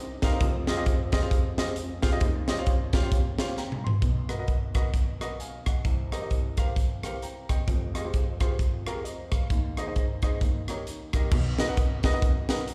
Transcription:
Already playing: grand piano C2 C3
0.22 grand piano D#4 G4 A#4 C5 F5, kick, snare, closed hi-hat
0.32 grand piano D#4 G4 A#4 C5 F5
0.41 grand piano F1 F2, kick, closed hi-hat
0.67 grand piano F4 G4 G#4 C5 D#5, snare, closed hi-hat
0.77 grand piano F4 G4 G#4 C5 D#5
0.86 kick, closed hi-hat
1.12 grand piano F4 G4 G#4 C5 D#5, kick, snare, closed hi-hat
1.21 grand piano F4 G4 G#4 C5 F5
1.31 kick, closed hi-hat
1.58 grand piano F4 G4 G#4 C5 D#5, snare, closed hi-hat
1.76 closed hi-hat
2.02 grand piano F4 G4 G#4 C5 F5, kick, snare, closed hi-hat
2.12 grand piano F4 G4 G#4 C5 D#5
2.20 grand piano D#2 D#3, kick, closed hi-hat
2.48 grand piano F4 G4 C5 C#5 D#5, snare, closed hi-hat
2.58 grand piano F4 G4 C5 C#5 F5
2.66 kick, closed hi-hat
2.93 grand piano F4 G4 C5 C#5 F5, kick, snare, closed hi-hat
3.02 grand piano F4 G4 C5 C#5 F5
3.12 kick, closed hi-hat
3.38 grand piano F4 G4 C5 C#5 F5, snare, closed hi-hat
3.57 grand piano G5 A#5, snare
3.72 mid tom
3.84 grand piano C6, floor tom
4.02 grand piano B1 B2, kick, closed hi-hat
4.29 grand piano F#4 A#4 B4 D#5, cross-stick, closed hi-hat
4.38 grand piano F#4 A#4 B4 D#5
4.48 kick, closed hi-hat
4.74 grand piano F#4 A#4 B4 D#5, kick, cross-stick, closed hi-hat
4.94 kick, closed hi-hat
5.21 grand piano F#4 A#4 B4 D#5, cross-stick, closed hi-hat
5.40 grand piano F5 G#5, closed hi-hat
5.66 grand piano D#5 F#5, kick, cross-stick, closed hi-hat
5.85 grand piano C2 C3, kick, closed hi-hat
6.12 grand piano G4 A#4 C5 D#5, cross-stick, closed hi-hat
6.21 grand piano G4 A#4 C5 D#5
6.30 kick, closed hi-hat
6.57 grand piano G4 A#4 C5 F5, kick, cross-stick, closed hi-hat
6.76 kick, closed hi-hat
7.03 grand piano G4 A#4 C5 F5, cross-stick, closed hi-hat
7.22 grand piano G5 A#5, closed hi-hat
7.49 grand piano D#5 G5, kick, cross-stick, closed hi-hat
7.68 grand piano F1 F2, kick, closed hi-hat
7.94 grand piano F4 G4 G#4 D#5, cross-stick, closed hi-hat
8.04 grand piano F4 G4 G#4 C5
8.13 kick, closed hi-hat
8.40 grand piano F4 G4 G#4 C5, kick, cross-stick, closed hi-hat
8.59 kick, closed hi-hat
8.86 grand piano F4 G4 G#4 A#4, cross-stick, closed hi-hat
9.04 grand piano C5 D#5, closed hi-hat
9.32 grand piano F5, kick, cross-stick, closed hi-hat
9.50 grand piano D#2 D#3, kick, closed hi-hat
9.77 grand piano D#4 G#4 C5 D#5, cross-stick, closed hi-hat
9.87 grand piano D#4 G#4 C5 D#5
9.96 kick, closed hi-hat
10.22 grand piano D#4 G#4 C5 D#5, kick, cross-stick, closed hi-hat
10.41 grand piano D#2 D#3, kick, closed hi-hat
10.68 grand piano D#4 G4 A#4 C#5, cross-stick, closed hi-hat
10.87 closed hi-hat
11.13 grand piano D#4 G4 A#4 D#5, kick, cross-stick, closed hi-hat
11.32 grand piano B1 B2, kick, crash
11.59 grand piano D#4 F#4 A#4 B4 D#5, snare, closed hi-hat
11.68 grand piano D#4 F#4 A#4 B4 F#5
11.77 kick, closed hi-hat
12.03 grand piano D#4 F#4 A#4 B4 D#5, kick, snare, closed hi-hat
12.13 grand piano D#4 F#4 A#4 B4 D#5
12.22 kick, closed hi-hat
12.49 grand piano D#4 F#4 A#4 B4 D#5, snare, closed hi-hat
12.68 closed hi-hat

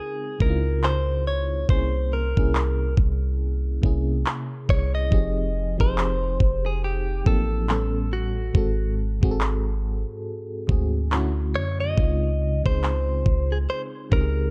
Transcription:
Already playing: fm electric piano C#3 G#3 C4 D#4 F4 G#4, clean electric guitar G#4
0.39 808-style bass C#2, fm electric piano C#3 G#3 C4 D#4, clean electric guitar A#4, kick
0.43 fm electric piano E4
0.49 fm electric piano F4
0.84 clean electric guitar C5, clap
1.27 clean electric guitar C#5
1.67 808-style bass C2, fm electric piano C3 A#3 C#4 E4, clean electric guitar C5, kick
1.71 fm electric piano G#4
2.13 clean electric guitar A#4
2.35 808-style bass C2, fm electric piano C3 A#3 C#4 E4, kick
2.39 fm electric piano G#4
2.55 clap
2.97 808-style bass C2, kick
3.82 808-style bass C2, fm electric piano C3 A#3 C#4 E4, kick
3.86 fm electric piano G#4
4.26 clap
4.69 808-style bass C2, clean electric guitar C#5, kick
4.95 clean electric guitar D#5
5.10 808-style bass F1, fm electric piano F3 C4 D#4 G4, kick
5.14 fm electric piano G#4
5.78 808-style bass F1, fm electric piano F3 C4 D#4 G4, clean electric guitar C5, kick
5.82 fm electric piano G#4
5.98 clap
6.40 808-style bass F1, kick
6.66 clean electric guitar G#4
6.84 clean electric guitar G4
7.24 808-style bass A1, fm electric piano F3 C4 D#4 G4, clean electric guitar A4, kick
7.29 fm electric piano A#3
7.67 fm electric piano A2 G3 B3 C#4, clap
7.72 fm electric piano A4
8.13 clean electric guitar F#4
8.53 808-style bass G#1, fm electric piano G#2 G#3 C4 F#4, kick
8.57 fm electric piano A4
9.21 808-style bass G#1, fm electric piano G#2 G#3 C4 F#4, kick
9.25 fm electric piano G#4
9.31 fm electric piano A4
9.41 clap
10.67 808-style bass D2, fm electric piano G#2 G#3 C4 F#4, kick
10.71 fm electric piano G#4
11.10 fm electric piano D3 A3 C#4 E4, clap
11.14 fm electric piano F#4
11.55 808-style bass F#2, clean electric guitar C#5
11.80 clean electric guitar D#5
11.96 808-style bass C#2, fm electric piano C#3 G#3 C4 D#4, kick
12.00 fm electric piano F4
12.63 808-style bass C#2, fm electric piano C#3 G#3 C4 D#4, clean electric guitar C5, kick
12.68 fm electric piano G#4
12.84 clap
13.26 808-style bass C#2, kick
13.52 clean electric guitar G#4
13.70 clean electric guitar C5
14.10 808-style bass C#2, fm electric piano C#3 G#3 C4 D#4, clean electric guitar A#4, kick
14.14 fm electric piano G4
14.21 fm electric piano G#4

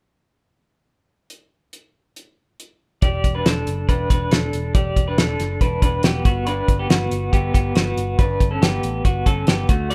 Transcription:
1.30 closed hi-hat
1.73 closed hi-hat
2.16 closed hi-hat
2.60 closed hi-hat
3.02 picked electric bass E1, clean electric guitar G4 D5, kick, closed hi-hat
3.24 picked electric bass E1, kick, closed hi-hat
3.35 clean electric guitar D4 B4
3.46 picked electric bass E1, clean electric guitar D4 A4, snare, closed hi-hat
3.67 picked electric bass F#1, closed hi-hat
3.89 picked electric bass E1, clean electric guitar D4 B4, kick, closed hi-hat
4.10 picked electric bass E1, clean electric guitar D4 B4, kick, closed hi-hat
4.31 picked electric bass E1, clean electric guitar D4 A4, snare, closed hi-hat
4.53 picked electric bass E1, closed hi-hat
4.75 picked electric bass E1, clean electric guitar G4 D5, kick, closed hi-hat
4.96 picked electric bass E1, kick, closed hi-hat
5.08 clean electric guitar D4 B4
5.18 picked electric bass E1, clean electric guitar D4 A4, snare, closed hi-hat
5.40 picked electric bass F#1, snare, closed hi-hat
5.61 picked electric bass E1, clean electric guitar D4 B4, kick, closed hi-hat
5.82 picked electric bass E1, clean electric guitar D4 B4, kick, closed hi-hat
6.03 picked electric bass E1, clean electric guitar B3 G4, snare, closed hi-hat
6.25 picked electric bass G1, clean electric guitar B3 F#4, kick, closed hi-hat
6.47 clean electric guitar D4 B4, closed hi-hat
6.68 picked electric bass G1, kick, closed hi-hat
6.79 clean electric guitar B3 G4
6.90 picked electric bass G1, clean electric guitar B3 F#4, snare, closed hi-hat
7.11 picked electric bass G1, closed hi-hat
7.33 picked electric bass G1, clean electric guitar B3 G4, kick, closed hi-hat
7.54 picked electric bass G1, clean electric guitar B3 G4, kick, closed hi-hat
7.75 picked electric bass G1, clean electric guitar B3 F#4, snare, closed hi-hat
7.97 picked electric bass G1, closed hi-hat
8.19 picked electric bass G1, clean electric guitar D4 B4, kick, closed hi-hat
8.40 picked electric bass G1, kick, closed hi-hat
8.51 clean electric guitar C#4 A4
8.61 picked electric bass G1, clean electric guitar B3 G4, snare, closed hi-hat
8.83 picked electric bass A1, closed hi-hat
9.05 picked electric bass G1, clean electric guitar B3 F#4, kick, closed hi-hat
9.26 picked electric bass G1, clean electric guitar C#4 A4, kick, closed hi-hat
9.47 picked electric bass G1, clean electric guitar B3 G4, snare, closed hi-hat
9.69 picked electric bass D2, clean electric guitar A3 F#4, kick, closed hi-hat
9.90 clean electric guitar F#4 D5, closed hi-hat

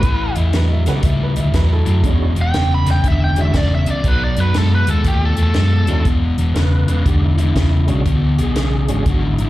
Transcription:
Already playing: lead electric guitar B4
0.03 fingered electric bass A1, overdriven electric guitar A2 E3, kick, closed hi-hat
0.34 fingered electric bass E2, overdriven electric guitar A2 E3, upright piano D#5, closed hi-hat
0.39 upright piano E5
0.53 fingered electric bass E2, overdriven electric guitar A2 F#3, upright piano B4, snare, closed hi-hat
0.68 upright piano D#5
0.73 upright piano E5
0.86 fingered electric bass C#2, overdriven electric guitar A2 F#3, tonewheel organ A3 B3 C#4 F#4 G4, upright piano B4, snare, closed hi-hat
1.00 fingered electric bass C#2, overdriven electric guitar A2, upright piano D#5, kick, closed hi-hat
1.04 overdriven electric guitar G3, upright piano E5
1.23 upright piano B4
1.35 fingered electric bass D2, overdriven electric guitar A2 G3, upright piano D#5, closed hi-hat
1.39 upright piano E5
1.54 fingered electric bass E2, overdriven electric guitar A2 F#3, upright piano B4, kick, snare, closed hi-hat
1.72 upright piano E4 A4
1.85 fingered electric bass F#2, overdriven electric guitar A2 F#3, closed hi-hat
2.03 fingered electric bass E1, overdriven electric guitar E2 B2, tonewheel organ G#3 C#4 D4 E4 F#4, kick, closed hi-hat
2.35 fingered electric bass E1, overdriven electric guitar E2 B2, closed hi-hat
2.42 lead electric guitar G5
2.54 fingered electric bass E1, overdriven electric guitar E2 C#3, snare, closed hi-hat
2.74 lead electric guitar B5
2.86 fingered electric bass E1, overdriven electric guitar E2 C#3, snare, closed hi-hat
2.91 lead electric guitar G5
3.04 fingered electric bass E1, overdriven electric guitar E2 D3, kick, closed hi-hat
3.08 lead electric guitar E5
3.24 lead electric guitar G5
3.36 overdriven electric guitar E2 D3, tonewheel organ G#3 C#4 D4 E4 F#4, closed hi-hat
3.41 lead electric guitar E5
3.54 fingered electric bass E1, overdriven electric guitar E2 C#3, lead electric guitar D5, kick, snare, closed hi-hat
3.75 lead electric guitar E5
3.86 fingered electric bass C#2, overdriven electric guitar E2 C#3, closed hi-hat
3.91 lead electric guitar D5
4.04 fingered electric bass B1, overdriven electric guitar B2 F#3, lead electric guitar B4, kick, closed hi-hat
4.24 lead electric guitar D5
4.37 fingered electric bass F#2, overdriven electric guitar B2 F#3, closed hi-hat
4.41 lead electric guitar B4
4.54 fingered electric bass F#2, overdriven electric guitar B2 G#3, lead electric guitar A4, snare, closed hi-hat
4.75 lead electric guitar B4
4.87 fingered electric bass D#2, overdriven electric guitar B2 G#3, lead electric guitar A4, closed hi-hat
5.04 fingered electric bass D#2, overdriven electric guitar B2 A3, lead electric guitar G4, kick, closed hi-hat
5.25 lead electric guitar A4
5.37 fingered electric bass E2, overdriven electric guitar B2 A3, closed hi-hat
5.43 lead electric guitar A4
5.54 fingered electric bass F#2, overdriven electric guitar B2 G#3, snare, closed hi-hat
5.87 fingered electric bass D#2, overdriven electric guitar B2 G#3, tonewheel organ G#3 C#4 D4 E4 F#4, closed hi-hat
6.05 fingered electric bass E1, overdriven electric guitar E2 B2, kick, closed hi-hat
6.37 fingered electric bass E1, overdriven electric guitar E2 B2, closed hi-hat
6.54 fingered electric bass E1, overdriven electric guitar E2 C#3, tonewheel organ A#4, snare, closed hi-hat
6.58 tonewheel organ B4
6.88 fingered electric bass E1, overdriven electric guitar E2 C#3, closed hi-hat
7.05 fingered electric bass E1, overdriven electric guitar E2 D3, tonewheel organ G4, kick, closed hi-hat
7.25 tonewheel organ E4
7.38 overdriven electric guitar E2 D3, closed hi-hat
7.43 tonewheel organ E4
7.55 fingered electric bass E1, overdriven electric guitar E2 C#3, kick, snare, closed hi-hat
7.87 fingered electric bass B1, overdriven electric guitar E2 C#3, tonewheel organ G#3 C#4 D4 F#4, closed hi-hat
8.05 fingered electric bass D2, overdriven electric guitar E2 B2, kick, closed hi-hat
8.37 fingered electric bass B1, overdriven electric guitar E2 B2, tonewheel organ G4, closed hi-hat
8.42 tonewheel organ G#4
8.56 fingered electric bass B1, overdriven electric guitar E2 C#3, snare, closed hi-hat
8.88 fingered electric bass G#1, overdriven electric guitar E2 C#3, tonewheel organ G#3 C#4 D4 F#4, closed hi-hat
9.06 fingered electric bass G#1, overdriven electric guitar E2 D3, tonewheel organ F#4, kick, closed hi-hat
9.26 tonewheel organ E4
9.38 fingered electric bass A1, overdriven electric guitar E2 D3, tonewheel organ D#4, closed hi-hat
9.43 tonewheel organ E4

